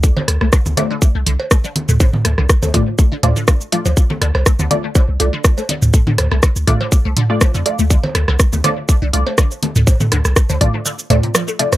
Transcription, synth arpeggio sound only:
X:1
M:4/4
L:1/16
Q:"Swing 16ths" 1/4=122
K:Dm
V:1 name="Synth arpeggio sound" clef=bass
A, D, z A, D, z A, D, z A, D, z A, D, z A, | D, z A, D, z A, D, z A, D, z D, D, z F, F, | z A, D, z A, D, z A, D, z A, D, z A, D, z | A, D, z A, D, z A, D, z A, D, z A, D, z A, |
D, z A, D, z A, D, z A, D, z A, D, z A, D, | z A, D, z A, D, z A, D, z A, C, F, A, C, z |]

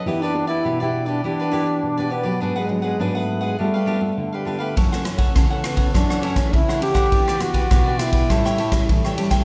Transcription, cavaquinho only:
X:1
M:4/4
L:1/16
Q:1/4=102
K:Edor
V:1 name="Cavaquinho"
[EGBd] [GBd] z [GBd] [EGBd] [GBd]2 [GBd] [EGBd] [GBd] [EGBd] z2 [GBd] [EGBd] [GBd] | [D^GBf] [GBf] z [GBf] [DGBf] [GBf]2 [GBf] [D=GB=f] [GBf] [DGBf] z2 [GBf] [DGBf] [GBf] | [EAcf] [Acf] z [Acf] [EAcf] [Acf]2 [Acf] [EAcf] [Acf] [EAcf] z2 [Acf] [EAcf] [Acf] | [EGBd] [GBd] z [GBd] [EGBd] [GBd]2 [GBd] [GAcg] [Acg] [GAcg] z2 [Acg] [GAcg] [Acg] |]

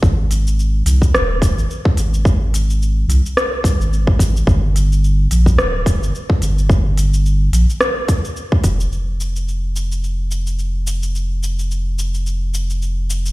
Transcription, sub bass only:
X:1
M:4/4
L:1/16
Q:"Swing 16ths" 1/4=108
K:Ablyd
V:1 name="Sub bass" clef=bass
A,,,6 C,,2 E,,,3 A,,, z2 A,,,2- | A,,,6 C,, z3 C,, A,,,4- A,,, | G,,,6 B,,,2 D,,,3 G,,, z2 G,,,2- | G,,,6 B,,, z6 z F,,,2 |
F,,,16- | F,,,16 |]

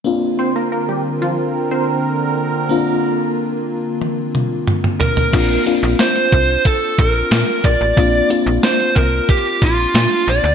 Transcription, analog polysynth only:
X:1
M:4/4
L:1/16
Q:1/4=91
K:Bb
V:1 name="Analog polysynth"
z2 [Cc] [B,B] [B,B] [G,G] z [F,F] z2 [Cc] z4 z | z16 | z16 | z16 |]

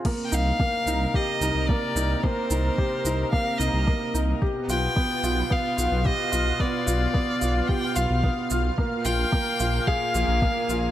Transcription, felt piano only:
X:1
M:4/4
L:1/8
Q:1/4=110
K:Gphr
V:1 name="Felt piano"
B, E B, E G E B, E | B, E G E B, E B, E | G F =B, F B, F G F | =B, F B, F G F B, F |
B, F B, F A F B, F |]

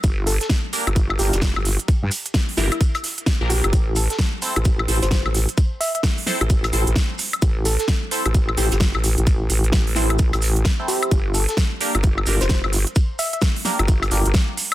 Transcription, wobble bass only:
X:1
M:4/4
L:1/16
Q:"Swing 16ths" 1/4=130
K:Aphr
V:1 name="Wobble bass" clef=bass
G,,,3 z4 G,,,3 G,,, F,,,2 G,,,2 z | z G,, z4 G,,, z6 B,,,2 G,,, | A,,,3 z4 A,,,3 A,,, G,,,2 A,,,2 z | z6 z A,,,3 A,,, A,,, z4 |
A,,,3 z4 A,,,3 A,,, G,,,2 A,,,2 A,,,- | A,,,2 A,,,2 A,,,4 B,,, A,,,3 z4 | G,,,3 z4 G,,,3 G,,, F,,,2 G,,,2 z | z6 z G,,,3 G,,, G,,, z4 |]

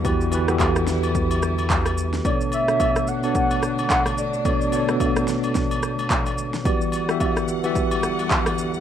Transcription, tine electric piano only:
X:1
M:4/4
L:1/16
Q:"Swing 16ths" 1/4=109
K:Bm
V:1 name="Tine electric piano"
[E,B,FGB]2 [E,B,FGB] [E,B,FGA]6 z6 z | [B,,B,DAc]2 z [B,,B,DAc]3 z [B,,B,DAc]6 z3 | [B,,B,DAc]2 [B,,B,DAc] [B,,B,DAd]6 z6 z | [E,B,FGd]2 z [E,B,FGe]3 z [E,B,FGe]6 z3 |]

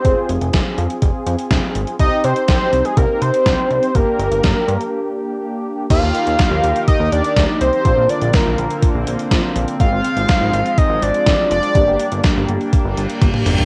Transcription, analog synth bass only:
X:1
M:4/4
L:1/16
Q:1/4=123
K:Eb
V:1 name="Analog synth bass" clef=bass
F,,, z F,,, F,,, F,,, z F,, z F,,, z F,, z F,,, z A,,, z | C,, z C, z C,, z C,, z C,, z C, z C,, z C,, z | G,,, z G,,, G,,, G,,, z G,, z8 z | E,, E,, z E,, z E,, E,, z2 E,, E,, z D,, z C,, z |
B,,, B,,, z B,,, z B,,, B,,, z2 B,,, B,,, z B,,, z B,,, z | A,,, A,,, z A,,, z A,,, A,,, z2 A,,, A,,, z G,,, z F,,, z | G,,, G,,, z G,,, z G,,, G,,, z2 G,,, G,,, z G,,, z G,,, z |]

